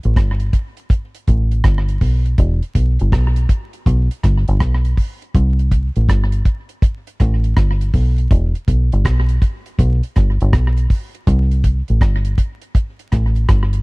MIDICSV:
0, 0, Header, 1, 3, 480
1, 0, Start_track
1, 0, Key_signature, 1, "minor"
1, 0, Tempo, 740741
1, 1545, Time_signature, 4, 2, 24, 8
1, 8957, End_track
2, 0, Start_track
2, 0, Title_t, "Fingered electric bass"
2, 0, Program_c, 0, 33
2, 33, Note_on_c, 0, 33, 78
2, 101, Note_off_c, 0, 33, 0
2, 111, Note_on_c, 0, 31, 81
2, 319, Note_off_c, 0, 31, 0
2, 834, Note_on_c, 0, 33, 95
2, 1041, Note_off_c, 0, 33, 0
2, 1070, Note_on_c, 0, 31, 86
2, 1278, Note_off_c, 0, 31, 0
2, 1308, Note_on_c, 0, 35, 66
2, 1517, Note_off_c, 0, 35, 0
2, 1549, Note_on_c, 0, 28, 102
2, 1683, Note_off_c, 0, 28, 0
2, 1787, Note_on_c, 0, 35, 78
2, 1922, Note_off_c, 0, 35, 0
2, 1952, Note_on_c, 0, 31, 82
2, 2021, Note_off_c, 0, 31, 0
2, 2028, Note_on_c, 0, 35, 88
2, 2237, Note_off_c, 0, 35, 0
2, 2507, Note_on_c, 0, 35, 96
2, 2642, Note_off_c, 0, 35, 0
2, 2751, Note_on_c, 0, 31, 99
2, 2885, Note_off_c, 0, 31, 0
2, 2906, Note_on_c, 0, 31, 86
2, 2977, Note_off_c, 0, 31, 0
2, 2989, Note_on_c, 0, 35, 88
2, 3198, Note_off_c, 0, 35, 0
2, 3469, Note_on_c, 0, 36, 102
2, 3814, Note_off_c, 0, 36, 0
2, 3865, Note_on_c, 0, 33, 70
2, 3937, Note_off_c, 0, 33, 0
2, 3949, Note_on_c, 0, 31, 87
2, 4157, Note_off_c, 0, 31, 0
2, 4672, Note_on_c, 0, 33, 93
2, 4879, Note_off_c, 0, 33, 0
2, 4909, Note_on_c, 0, 31, 78
2, 5117, Note_off_c, 0, 31, 0
2, 5149, Note_on_c, 0, 35, 70
2, 5357, Note_off_c, 0, 35, 0
2, 5388, Note_on_c, 0, 28, 91
2, 5523, Note_off_c, 0, 28, 0
2, 5627, Note_on_c, 0, 35, 78
2, 5762, Note_off_c, 0, 35, 0
2, 5787, Note_on_c, 0, 31, 81
2, 5857, Note_off_c, 0, 31, 0
2, 5868, Note_on_c, 0, 35, 85
2, 6076, Note_off_c, 0, 35, 0
2, 6347, Note_on_c, 0, 35, 100
2, 6482, Note_off_c, 0, 35, 0
2, 6592, Note_on_c, 0, 31, 93
2, 6725, Note_off_c, 0, 31, 0
2, 6750, Note_on_c, 0, 31, 89
2, 6819, Note_off_c, 0, 31, 0
2, 6830, Note_on_c, 0, 35, 87
2, 7037, Note_off_c, 0, 35, 0
2, 7308, Note_on_c, 0, 36, 105
2, 7652, Note_off_c, 0, 36, 0
2, 7710, Note_on_c, 0, 33, 71
2, 7779, Note_off_c, 0, 33, 0
2, 7787, Note_on_c, 0, 31, 86
2, 7995, Note_off_c, 0, 31, 0
2, 8509, Note_on_c, 0, 33, 89
2, 8716, Note_off_c, 0, 33, 0
2, 8747, Note_on_c, 0, 31, 85
2, 8955, Note_off_c, 0, 31, 0
2, 8957, End_track
3, 0, Start_track
3, 0, Title_t, "Drums"
3, 21, Note_on_c, 9, 42, 50
3, 86, Note_off_c, 9, 42, 0
3, 106, Note_on_c, 9, 36, 114
3, 109, Note_on_c, 9, 42, 86
3, 110, Note_on_c, 9, 37, 101
3, 170, Note_off_c, 9, 36, 0
3, 174, Note_off_c, 9, 42, 0
3, 175, Note_off_c, 9, 37, 0
3, 258, Note_on_c, 9, 42, 64
3, 322, Note_off_c, 9, 42, 0
3, 344, Note_on_c, 9, 36, 104
3, 345, Note_on_c, 9, 42, 81
3, 409, Note_off_c, 9, 36, 0
3, 410, Note_off_c, 9, 42, 0
3, 498, Note_on_c, 9, 42, 49
3, 563, Note_off_c, 9, 42, 0
3, 583, Note_on_c, 9, 36, 123
3, 587, Note_on_c, 9, 42, 82
3, 648, Note_off_c, 9, 36, 0
3, 652, Note_off_c, 9, 42, 0
3, 743, Note_on_c, 9, 42, 54
3, 808, Note_off_c, 9, 42, 0
3, 826, Note_on_c, 9, 42, 67
3, 828, Note_on_c, 9, 36, 84
3, 891, Note_off_c, 9, 42, 0
3, 893, Note_off_c, 9, 36, 0
3, 982, Note_on_c, 9, 42, 46
3, 1047, Note_off_c, 9, 42, 0
3, 1062, Note_on_c, 9, 37, 109
3, 1065, Note_on_c, 9, 36, 109
3, 1066, Note_on_c, 9, 42, 69
3, 1127, Note_off_c, 9, 37, 0
3, 1129, Note_off_c, 9, 36, 0
3, 1131, Note_off_c, 9, 42, 0
3, 1221, Note_on_c, 9, 42, 57
3, 1286, Note_off_c, 9, 42, 0
3, 1303, Note_on_c, 9, 36, 90
3, 1303, Note_on_c, 9, 46, 71
3, 1367, Note_off_c, 9, 46, 0
3, 1368, Note_off_c, 9, 36, 0
3, 1462, Note_on_c, 9, 42, 47
3, 1526, Note_off_c, 9, 42, 0
3, 1542, Note_on_c, 9, 42, 86
3, 1543, Note_on_c, 9, 36, 114
3, 1607, Note_off_c, 9, 42, 0
3, 1608, Note_off_c, 9, 36, 0
3, 1701, Note_on_c, 9, 42, 44
3, 1766, Note_off_c, 9, 42, 0
3, 1783, Note_on_c, 9, 36, 96
3, 1783, Note_on_c, 9, 42, 88
3, 1848, Note_off_c, 9, 36, 0
3, 1848, Note_off_c, 9, 42, 0
3, 1940, Note_on_c, 9, 42, 50
3, 2005, Note_off_c, 9, 42, 0
3, 2024, Note_on_c, 9, 36, 108
3, 2027, Note_on_c, 9, 42, 73
3, 2029, Note_on_c, 9, 37, 105
3, 2089, Note_off_c, 9, 36, 0
3, 2092, Note_off_c, 9, 42, 0
3, 2093, Note_off_c, 9, 37, 0
3, 2178, Note_on_c, 9, 42, 64
3, 2243, Note_off_c, 9, 42, 0
3, 2263, Note_on_c, 9, 36, 104
3, 2264, Note_on_c, 9, 42, 81
3, 2327, Note_off_c, 9, 36, 0
3, 2329, Note_off_c, 9, 42, 0
3, 2418, Note_on_c, 9, 42, 48
3, 2483, Note_off_c, 9, 42, 0
3, 2502, Note_on_c, 9, 36, 111
3, 2507, Note_on_c, 9, 42, 85
3, 2567, Note_off_c, 9, 36, 0
3, 2571, Note_off_c, 9, 42, 0
3, 2663, Note_on_c, 9, 42, 57
3, 2728, Note_off_c, 9, 42, 0
3, 2744, Note_on_c, 9, 37, 70
3, 2745, Note_on_c, 9, 42, 67
3, 2746, Note_on_c, 9, 36, 86
3, 2809, Note_off_c, 9, 37, 0
3, 2810, Note_off_c, 9, 42, 0
3, 2811, Note_off_c, 9, 36, 0
3, 2902, Note_on_c, 9, 42, 55
3, 2966, Note_off_c, 9, 42, 0
3, 2984, Note_on_c, 9, 36, 107
3, 2984, Note_on_c, 9, 37, 107
3, 2987, Note_on_c, 9, 42, 71
3, 3048, Note_off_c, 9, 37, 0
3, 3049, Note_off_c, 9, 36, 0
3, 3052, Note_off_c, 9, 42, 0
3, 3142, Note_on_c, 9, 42, 59
3, 3207, Note_off_c, 9, 42, 0
3, 3224, Note_on_c, 9, 36, 87
3, 3225, Note_on_c, 9, 46, 68
3, 3288, Note_off_c, 9, 36, 0
3, 3290, Note_off_c, 9, 46, 0
3, 3383, Note_on_c, 9, 42, 50
3, 3448, Note_off_c, 9, 42, 0
3, 3464, Note_on_c, 9, 36, 120
3, 3465, Note_on_c, 9, 42, 78
3, 3528, Note_off_c, 9, 36, 0
3, 3530, Note_off_c, 9, 42, 0
3, 3623, Note_on_c, 9, 42, 45
3, 3688, Note_off_c, 9, 42, 0
3, 3703, Note_on_c, 9, 36, 98
3, 3705, Note_on_c, 9, 42, 89
3, 3768, Note_off_c, 9, 36, 0
3, 3770, Note_off_c, 9, 42, 0
3, 3860, Note_on_c, 9, 42, 48
3, 3925, Note_off_c, 9, 42, 0
3, 3944, Note_on_c, 9, 36, 103
3, 3949, Note_on_c, 9, 42, 82
3, 3950, Note_on_c, 9, 37, 98
3, 4009, Note_off_c, 9, 36, 0
3, 4014, Note_off_c, 9, 42, 0
3, 4015, Note_off_c, 9, 37, 0
3, 4097, Note_on_c, 9, 42, 64
3, 4162, Note_off_c, 9, 42, 0
3, 4182, Note_on_c, 9, 36, 99
3, 4184, Note_on_c, 9, 42, 70
3, 4247, Note_off_c, 9, 36, 0
3, 4249, Note_off_c, 9, 42, 0
3, 4335, Note_on_c, 9, 42, 49
3, 4400, Note_off_c, 9, 42, 0
3, 4421, Note_on_c, 9, 36, 121
3, 4425, Note_on_c, 9, 42, 82
3, 4486, Note_off_c, 9, 36, 0
3, 4490, Note_off_c, 9, 42, 0
3, 4582, Note_on_c, 9, 42, 60
3, 4647, Note_off_c, 9, 42, 0
3, 4664, Note_on_c, 9, 37, 59
3, 4666, Note_on_c, 9, 42, 74
3, 4667, Note_on_c, 9, 36, 89
3, 4729, Note_off_c, 9, 37, 0
3, 4730, Note_off_c, 9, 42, 0
3, 4732, Note_off_c, 9, 36, 0
3, 4820, Note_on_c, 9, 42, 52
3, 4885, Note_off_c, 9, 42, 0
3, 4903, Note_on_c, 9, 37, 106
3, 4904, Note_on_c, 9, 36, 96
3, 4906, Note_on_c, 9, 42, 75
3, 4967, Note_off_c, 9, 37, 0
3, 4969, Note_off_c, 9, 36, 0
3, 4971, Note_off_c, 9, 42, 0
3, 5061, Note_on_c, 9, 42, 59
3, 5126, Note_off_c, 9, 42, 0
3, 5143, Note_on_c, 9, 36, 96
3, 5143, Note_on_c, 9, 46, 68
3, 5208, Note_off_c, 9, 36, 0
3, 5208, Note_off_c, 9, 46, 0
3, 5302, Note_on_c, 9, 42, 51
3, 5367, Note_off_c, 9, 42, 0
3, 5384, Note_on_c, 9, 36, 117
3, 5384, Note_on_c, 9, 42, 84
3, 5449, Note_off_c, 9, 36, 0
3, 5449, Note_off_c, 9, 42, 0
3, 5542, Note_on_c, 9, 42, 47
3, 5607, Note_off_c, 9, 42, 0
3, 5623, Note_on_c, 9, 36, 93
3, 5625, Note_on_c, 9, 42, 83
3, 5688, Note_off_c, 9, 36, 0
3, 5690, Note_off_c, 9, 42, 0
3, 5782, Note_on_c, 9, 42, 54
3, 5847, Note_off_c, 9, 42, 0
3, 5864, Note_on_c, 9, 36, 101
3, 5867, Note_on_c, 9, 42, 71
3, 5868, Note_on_c, 9, 37, 110
3, 5929, Note_off_c, 9, 36, 0
3, 5931, Note_off_c, 9, 42, 0
3, 5933, Note_off_c, 9, 37, 0
3, 6017, Note_on_c, 9, 42, 61
3, 6082, Note_off_c, 9, 42, 0
3, 6103, Note_on_c, 9, 36, 96
3, 6105, Note_on_c, 9, 42, 74
3, 6167, Note_off_c, 9, 36, 0
3, 6169, Note_off_c, 9, 42, 0
3, 6258, Note_on_c, 9, 42, 49
3, 6323, Note_off_c, 9, 42, 0
3, 6342, Note_on_c, 9, 36, 114
3, 6345, Note_on_c, 9, 42, 82
3, 6407, Note_off_c, 9, 36, 0
3, 6410, Note_off_c, 9, 42, 0
3, 6502, Note_on_c, 9, 42, 55
3, 6567, Note_off_c, 9, 42, 0
3, 6583, Note_on_c, 9, 37, 69
3, 6585, Note_on_c, 9, 42, 68
3, 6587, Note_on_c, 9, 36, 92
3, 6648, Note_off_c, 9, 37, 0
3, 6649, Note_off_c, 9, 42, 0
3, 6652, Note_off_c, 9, 36, 0
3, 6743, Note_on_c, 9, 42, 53
3, 6807, Note_off_c, 9, 42, 0
3, 6824, Note_on_c, 9, 37, 117
3, 6825, Note_on_c, 9, 36, 108
3, 6828, Note_on_c, 9, 42, 75
3, 6889, Note_off_c, 9, 36, 0
3, 6889, Note_off_c, 9, 37, 0
3, 6892, Note_off_c, 9, 42, 0
3, 6981, Note_on_c, 9, 42, 62
3, 7046, Note_off_c, 9, 42, 0
3, 7063, Note_on_c, 9, 36, 91
3, 7064, Note_on_c, 9, 46, 69
3, 7128, Note_off_c, 9, 36, 0
3, 7128, Note_off_c, 9, 46, 0
3, 7223, Note_on_c, 9, 42, 53
3, 7287, Note_off_c, 9, 42, 0
3, 7303, Note_on_c, 9, 42, 89
3, 7304, Note_on_c, 9, 36, 127
3, 7368, Note_off_c, 9, 42, 0
3, 7369, Note_off_c, 9, 36, 0
3, 7461, Note_on_c, 9, 42, 48
3, 7526, Note_off_c, 9, 42, 0
3, 7543, Note_on_c, 9, 36, 96
3, 7544, Note_on_c, 9, 42, 89
3, 7608, Note_off_c, 9, 36, 0
3, 7609, Note_off_c, 9, 42, 0
3, 7699, Note_on_c, 9, 42, 47
3, 7764, Note_off_c, 9, 42, 0
3, 7783, Note_on_c, 9, 36, 112
3, 7785, Note_on_c, 9, 42, 73
3, 7787, Note_on_c, 9, 37, 112
3, 7848, Note_off_c, 9, 36, 0
3, 7850, Note_off_c, 9, 42, 0
3, 7851, Note_off_c, 9, 37, 0
3, 7936, Note_on_c, 9, 42, 63
3, 8001, Note_off_c, 9, 42, 0
3, 8021, Note_on_c, 9, 36, 93
3, 8022, Note_on_c, 9, 42, 85
3, 8086, Note_off_c, 9, 36, 0
3, 8087, Note_off_c, 9, 42, 0
3, 8174, Note_on_c, 9, 42, 50
3, 8239, Note_off_c, 9, 42, 0
3, 8260, Note_on_c, 9, 36, 118
3, 8264, Note_on_c, 9, 42, 82
3, 8325, Note_off_c, 9, 36, 0
3, 8329, Note_off_c, 9, 42, 0
3, 8419, Note_on_c, 9, 42, 50
3, 8484, Note_off_c, 9, 42, 0
3, 8501, Note_on_c, 9, 37, 66
3, 8503, Note_on_c, 9, 42, 65
3, 8505, Note_on_c, 9, 36, 84
3, 8566, Note_off_c, 9, 37, 0
3, 8567, Note_off_c, 9, 42, 0
3, 8570, Note_off_c, 9, 36, 0
3, 8658, Note_on_c, 9, 42, 51
3, 8722, Note_off_c, 9, 42, 0
3, 8740, Note_on_c, 9, 37, 115
3, 8742, Note_on_c, 9, 36, 123
3, 8743, Note_on_c, 9, 42, 77
3, 8804, Note_off_c, 9, 37, 0
3, 8806, Note_off_c, 9, 36, 0
3, 8808, Note_off_c, 9, 42, 0
3, 8897, Note_on_c, 9, 42, 62
3, 8957, Note_off_c, 9, 42, 0
3, 8957, End_track
0, 0, End_of_file